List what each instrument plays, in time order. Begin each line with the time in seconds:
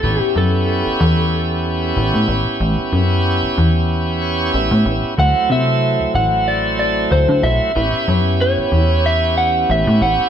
Already playing: electric slide guitar A4
0.03 analog synth bass A1, tonewheel organ B3 C#4 E4 G4
0.22 electric slide guitar G4
0.36 analog synth bass F#2, electric slide guitar A4
0.86 analog synth bass A1
1.00 analog synth bass E2
1.96 analog synth bass A1
2.14 analog synth bass A2
2.28 analog synth bass A1
2.60 analog synth bass A1
2.93 analog synth bass F#2
3.42 analog synth bass A1
3.58 analog synth bass E2
4.22 tonewheel organ C#5
4.54 analog synth bass A1, tonewheel organ E5
4.71 analog synth bass A2
4.86 analog synth bass A1
5.17 analog synth bass D2, tonewheel organ F#3 A3 C4 E4, electric slide guitar F#5
5.50 analog synth bass C3, electric slide guitar E5
6.00 analog synth bass D2
6.14 analog synth bass A1, electric slide guitar F#5
6.48 electric slide guitar D5
6.79 electric slide guitar D5
7.11 analog synth bass D2, electric slide guitar C5
7.28 analog synth bass D3
7.43 analog synth bass B1, electric slide guitar E5
7.75 analog synth bass A1, tonewheel organ B3 C#4 E4 G4
8.08 analog synth bass F#2
8.41 electric slide guitar C#5
8.58 analog synth bass A1
8.72 analog synth bass E2
9.06 electric slide guitar E5
9.38 electric slide guitar F#5
9.69 analog synth bass A1, electric slide guitar E5
9.87 analog synth bass A2
10.01 analog synth bass A1, electric slide guitar F#5